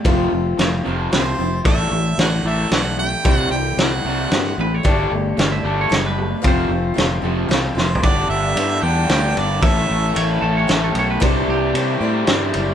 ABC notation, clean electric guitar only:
X:1
M:3/4
L:1/16
Q:1/4=113
K:Glyd
V:1 name="Clean electric guitar"
z12 | z12 | z8 z2 B c- | c4- c e2 c2 B3 |
=c8- c3 z | z12 | z4 c B A c B A c B | A2 G2 z8 |]